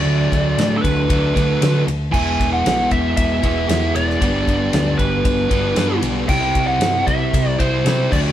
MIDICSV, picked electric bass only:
0, 0, Header, 1, 2, 480
1, 0, Start_track
1, 0, Tempo, 520382
1, 50, Time_signature, 4, 2, 24, 8
1, 7675, End_track
2, 0, Start_track
2, 0, Title_t, "Picked electric bass"
2, 0, Program_c, 0, 34
2, 44, Note_on_c, 0, 38, 93
2, 248, Note_off_c, 0, 38, 0
2, 297, Note_on_c, 0, 38, 86
2, 495, Note_off_c, 0, 38, 0
2, 532, Note_on_c, 0, 45, 80
2, 731, Note_off_c, 0, 45, 0
2, 779, Note_on_c, 0, 38, 86
2, 975, Note_off_c, 0, 38, 0
2, 1016, Note_on_c, 0, 38, 89
2, 1212, Note_off_c, 0, 38, 0
2, 1252, Note_on_c, 0, 38, 88
2, 1449, Note_off_c, 0, 38, 0
2, 1487, Note_on_c, 0, 50, 84
2, 1686, Note_off_c, 0, 50, 0
2, 1724, Note_on_c, 0, 38, 95
2, 1924, Note_off_c, 0, 38, 0
2, 1973, Note_on_c, 0, 28, 95
2, 2169, Note_off_c, 0, 28, 0
2, 2215, Note_on_c, 0, 28, 89
2, 2410, Note_off_c, 0, 28, 0
2, 2444, Note_on_c, 0, 35, 83
2, 2643, Note_off_c, 0, 35, 0
2, 2690, Note_on_c, 0, 28, 87
2, 2887, Note_off_c, 0, 28, 0
2, 2928, Note_on_c, 0, 28, 94
2, 3125, Note_off_c, 0, 28, 0
2, 3169, Note_on_c, 0, 28, 84
2, 3366, Note_off_c, 0, 28, 0
2, 3405, Note_on_c, 0, 40, 80
2, 3603, Note_off_c, 0, 40, 0
2, 3640, Note_on_c, 0, 28, 96
2, 3840, Note_off_c, 0, 28, 0
2, 3894, Note_on_c, 0, 31, 99
2, 4088, Note_off_c, 0, 31, 0
2, 4131, Note_on_c, 0, 31, 78
2, 4326, Note_off_c, 0, 31, 0
2, 4364, Note_on_c, 0, 38, 88
2, 4562, Note_off_c, 0, 38, 0
2, 4606, Note_on_c, 0, 31, 93
2, 4804, Note_off_c, 0, 31, 0
2, 4844, Note_on_c, 0, 31, 99
2, 5043, Note_off_c, 0, 31, 0
2, 5083, Note_on_c, 0, 31, 87
2, 5282, Note_off_c, 0, 31, 0
2, 5318, Note_on_c, 0, 43, 83
2, 5520, Note_off_c, 0, 43, 0
2, 5556, Note_on_c, 0, 35, 95
2, 5759, Note_off_c, 0, 35, 0
2, 5803, Note_on_c, 0, 36, 97
2, 6004, Note_off_c, 0, 36, 0
2, 6045, Note_on_c, 0, 36, 85
2, 6245, Note_off_c, 0, 36, 0
2, 6264, Note_on_c, 0, 43, 87
2, 6473, Note_off_c, 0, 43, 0
2, 6524, Note_on_c, 0, 36, 91
2, 6726, Note_off_c, 0, 36, 0
2, 6769, Note_on_c, 0, 36, 98
2, 6969, Note_off_c, 0, 36, 0
2, 7011, Note_on_c, 0, 36, 85
2, 7211, Note_off_c, 0, 36, 0
2, 7237, Note_on_c, 0, 48, 77
2, 7444, Note_off_c, 0, 48, 0
2, 7493, Note_on_c, 0, 38, 99
2, 7675, Note_off_c, 0, 38, 0
2, 7675, End_track
0, 0, End_of_file